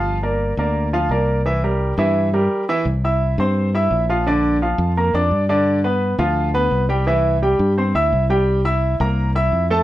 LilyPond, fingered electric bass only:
\new Staff \with { instrumentName = "Fingered electric bass" } { \clef bass \time 4/4 \key c \mixolydian \tempo 4 = 171 g,,4. d,4. c,4~ | c,4. g,4. r4 | c,4. g,4. bes,,4~ | bes,,4. f,4 f,8 g,4~ |
g,4. d,4. c,4~ | c,4. g,4 d,8 c,4~ | c,4. c,4. f,4 | }